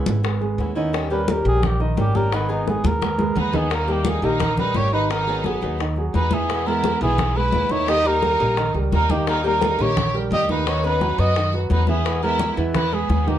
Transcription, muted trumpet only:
1.12 B4
1.31 A#4
1.48 G#4
1.67 G4
1.83 E4
2.00 G4
2.16 A#4
2.35 B4
2.51 D#4
2.70 G#4
2.87 A#4
3.40 B4
3.56 G#4
3.74 A#4
3.92 G4
4.09 G#4
4.25 A#4
4.59 B4
4.76 C#5
4.94 B4
5.10 A#4
5.45 G#4
6.15 B4
6.34 G#4
6.67 A#4
7.03 G#4
7.37 B4
7.71 C#5
7.89 D#5
8.07 A#4
8.94 A#4
9.11 G4
9.29 A#4
9.46 A#4
9.82 C#5
10.33 D#5
10.51 B4
10.68 C#5
10.86 B4
11.20 D#5
11.72 B4
11.89 G#4
12.23 A#4
12.75 B4
12.94 G#4
13.28 G4

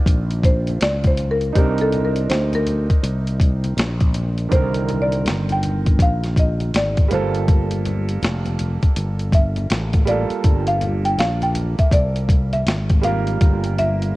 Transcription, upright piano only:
Already playing: D#3 C4 D4 F4
1.53 C4 D4 D#4
1.58 A#4
4.49 D3 D#3 C4
4.55 A#4
7.08 G3 A#3 F4
7.14 A4
10.05 G3 A#3 F4
10.11 A4
13.01 G3 A#3 F4
13.07 A#4

